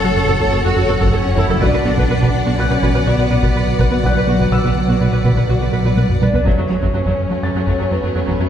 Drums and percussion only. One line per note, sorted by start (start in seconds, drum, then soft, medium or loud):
0.40 taiko medium
1.01 taiko medium
1.37 taiko medium
1.62 taiko loud
1.98 taiko medium
2.22 taiko medium
2.83 taiko medium
3.43 taiko medium
3.79 taiko medium
4.03 taiko medium
4.40 taiko medium
4.64 taiko medium
5.25 taiko medium
5.85 taiko high medium
5.98 taiko high medium
6.10 taiko low-mid medium
6.22 taiko high medium
6.34 taiko low medium
6.46 taiko medium
6.82 taiko medium
7.06 taiko medium
7.67 taiko medium
8.27 taiko medium